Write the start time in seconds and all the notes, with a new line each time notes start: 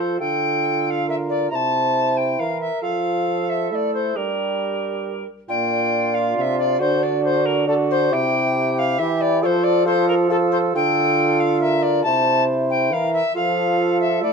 Already playing: F3 F4 A4
0.00 C5
0.20 D3 F4 A4 G5
0.86 G5
0.90 F5
1.09 A#4 E5
1.29 D5
1.50 C3 E4 C5 A#5
1.55 A5
2.17 G5
2.39 E3 A#4 F5
2.61 E5
2.82 F3 F4 A4 F5
3.50 E5
3.71 A3 E4 D5 E5
3.94 C5
4.16 G3 D4 G4 A#4
5.49 A#2 D4 F4 G5
6.14 F5
6.36 C3 F5
6.41 E5
6.59 D5
6.79 D3 D4 F#4 C5
7.03 D5
7.24 C5
7.46 A#4
7.67 D4 F#4 A4
7.91 C5
8.12 C3 E4 G4 G5
8.79 F5
8.99 E3 E4 G4 E5
9.21 D5
9.42 F3 F4 A4 C5 D5
9.64 D5
9.86 F4 A4 C5
10.08 A#4
10.30 F4 A4
10.51 C5
10.74 D3 F4 A4 G5
11.40 F5
11.61 A#4 E5
11.83 D5
12.04 C3 E4 C5 A5
12.70 G5
12.91 E3 A#4 F5
13.13 E5
13.35 F3 F4 A4 F5
14.01 E5
14.23 A3 E4 D5